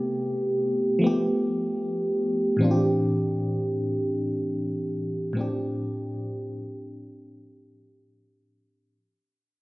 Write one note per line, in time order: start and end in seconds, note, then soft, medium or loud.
0.00 0.98 C3 medium
0.00 0.99 A3 medium
0.00 1.00 B3 medium
0.00 1.01 G4 medium
0.99 2.55 F3 medium
0.99 2.57 A3 medium
1.04 2.58 B3 medium
1.04 2.59 G4 medium
2.57 5.31 A2 medium
2.57 5.32 E3 medium
2.57 5.33 C4 medium
2.62 5.34 D4 medium
2.62 2.69 F4 medium
2.71 5.38 G4 medium
5.33 8.47 A2 medium
5.33 8.48 F3 medium
5.33 8.49 C4 medium
5.39 8.50 D4 medium
5.39 8.51 G4 medium